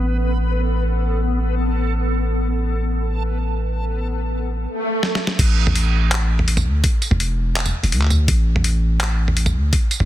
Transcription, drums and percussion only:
5.03 snare medium
5.15 snare medium
5.27 snare medium
5.39 kick loud
5.39 closed hi-hat medium
5.39 crash loud
5.67 mid tom medium
5.75 closed hi-hat medium
6.12 clap loud
6.12 closed hi-hat medium
6.39 mid tom medium
6.48 closed hi-hat medium
6.57 mid tom medium
6.57 tambourine soft
6.84 kick loud
6.84 closed hi-hat medium
7.02 closed hi-hat soft
7.02 tambourine soft
7.11 mid tom medium
7.20 closed hi-hat medium
7.56 clap loud
7.56 closed hi-hat medium
7.66 mid tom medium
7.66 tambourine medium
7.84 closed hi-hat soft
7.92 closed hi-hat medium
8.02 clap soft
8.10 mid tom medium
8.10 tambourine soft
8.28 kick loud
8.28 closed hi-hat medium
8.56 mid tom medium
8.64 closed hi-hat medium
9.01 clap loud
9.01 closed hi-hat medium
9.28 mid tom medium
9.37 closed hi-hat medium
9.46 mid tom medium
9.46 tambourine soft
9.73 kick loud
9.73 closed hi-hat medium
9.91 closed hi-hat soft
9.91 tambourine soft
10.00 mid tom medium

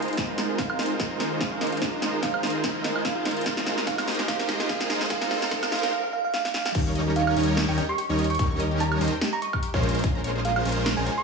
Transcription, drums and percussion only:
0.02 closed hi-hat medium
0.08 closed hi-hat soft
0.13 closed hi-hat medium
0.17 kick medium
0.17 snare medium
0.17 closed hi-hat medium
0.38 snare medium
0.38 closed hi-hat medium
0.58 kick medium
0.58 snare medium
0.58 closed hi-hat medium
0.70 high woodblock medium
0.79 snare medium
0.79 closed hi-hat soft
0.83 closed hi-hat medium
0.86 closed hi-hat medium
1.00 kick medium
1.00 snare medium
1.00 closed hi-hat medium
1.20 snare medium
1.20 closed hi-hat medium
1.41 kick loud
1.41 snare medium
1.41 closed hi-hat medium
1.61 snare medium
1.61 closed hi-hat soft
1.67 closed hi-hat medium
1.72 closed hi-hat soft
1.77 closed hi-hat medium
1.82 kick loud
1.82 snare medium
1.82 closed hi-hat medium
2.02 snare medium
2.02 closed hi-hat medium
2.23 kick loud
2.23 snare medium
2.23 closed hi-hat medium
2.34 high woodblock medium
2.43 snare medium
2.43 closed hi-hat soft
2.47 closed hi-hat medium
2.50 closed hi-hat medium
2.64 kick loud
2.64 snare medium
2.64 closed hi-hat medium
2.84 snare medium
2.84 closed hi-hat medium
2.96 high woodblock medium
3.05 kick loud
3.05 snare medium
3.05 closed hi-hat medium
3.25 snare medium
3.25 closed hi-hat soft
3.31 closed hi-hat medium
3.37 closed hi-hat soft
3.41 closed hi-hat medium
3.46 kick medium
3.46 snare medium
3.46 closed hi-hat medium
3.57 snare medium
3.67 snare medium
3.67 closed hi-hat medium
3.78 snare medium
3.87 kick medium
3.87 snare loud
3.87 closed hi-hat medium
3.98 snare medium
3.98 high woodblock medium
4.08 snare medium
4.08 closed hi-hat soft
4.11 closed hi-hat medium
4.15 closed hi-hat medium
4.19 snare medium
4.28 kick medium
4.28 snare loud
4.28 closed hi-hat medium
4.39 snare medium
4.49 snare loud
4.49 closed hi-hat medium
4.60 snare medium
4.69 kick loud
4.69 snare loud
4.69 closed hi-hat medium
4.81 snare medium
4.90 snare loud
4.90 closed hi-hat soft
4.95 closed hi-hat medium
5.01 snare medium
5.01 closed hi-hat soft
5.06 closed hi-hat medium
5.10 kick loud
5.10 snare loud
5.10 closed hi-hat medium
5.22 snare medium
5.31 snare loud
5.31 closed hi-hat medium
5.42 snare medium
5.51 kick loud
5.51 snare loud
5.51 closed hi-hat medium
5.63 snare medium
5.63 high woodblock medium
5.72 snare loud
5.72 closed hi-hat medium
5.76 closed hi-hat medium
5.79 closed hi-hat medium
5.83 snare loud
6.34 snare medium
6.45 snare medium
6.54 snare medium
6.65 snare medium
6.75 kick loud
6.75 closed hi-hat medium
6.75 crash loud
6.95 closed hi-hat medium
7.16 closed hi-hat medium
7.27 high woodblock medium
7.37 closed hi-hat medium
7.37 open hi-hat medium
7.43 closed hi-hat medium
7.57 snare loud
7.57 closed hi-hat medium
7.78 closed hi-hat medium
7.98 closed hi-hat medium
8.19 closed hi-hat soft
8.24 closed hi-hat medium
8.30 closed hi-hat soft
8.35 closed hi-hat medium
8.39 kick loud
8.39 closed hi-hat medium
8.60 closed hi-hat medium
8.80 closed hi-hat medium
8.92 high woodblock medium
9.01 closed hi-hat medium
9.01 open hi-hat medium
9.08 closed hi-hat medium
9.21 snare loud
9.21 closed hi-hat medium
9.42 closed hi-hat medium
9.53 kick medium
9.53 high woodblock medium
9.63 closed hi-hat medium
9.74 kick loud
9.83 closed hi-hat soft
9.89 closed hi-hat medium
9.95 closed hi-hat medium
9.99 closed hi-hat medium
10.04 kick loud
10.04 closed hi-hat medium
10.24 closed hi-hat medium
10.45 closed hi-hat medium
10.56 high woodblock medium
10.65 closed hi-hat medium
10.65 open hi-hat medium
10.72 closed hi-hat medium
10.86 snare loud
10.86 closed hi-hat medium
11.07 closed hi-hat medium

